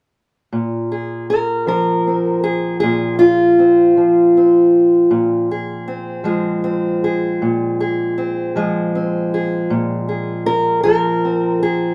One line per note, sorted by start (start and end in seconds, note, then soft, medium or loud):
0.53 2.83 A#2 medium
0.92 1.30 G#4 soft
1.30 1.67 A#4 medium
1.67 3.97 F3 medium
1.67 2.43 A#4 medium
2.07 3.59 C4 soft
2.44 2.79 G#4 medium
2.80 5.10 A#2 medium
2.80 3.18 G#4 medium
3.19 5.50 F4 medium
3.59 4.37 C4 soft
3.97 6.24 F3 medium
4.37 5.87 C4 soft
5.11 7.41 A#2 medium
5.51 7.04 G#4 medium
5.88 6.63 C4 soft
6.24 8.55 F3 medium
6.24 8.56 G#3 medium
6.64 8.17 C4 medium
7.04 7.80 G#4 medium
7.42 9.70 A#2 medium
7.80 9.34 G#4 medium
8.18 8.95 C4 medium
8.56 10.85 F3 medium
8.56 11.94 G#3 medium
8.95 11.24 C4 medium
9.34 9.73 G#4 medium
9.70 11.94 A#2 medium
10.09 10.46 G#4 soft
10.46 10.82 A#4 loud
10.83 11.94 F3 medium
10.83 11.61 A#4 medium
11.25 11.94 C4 soft
11.63 11.94 G#4 medium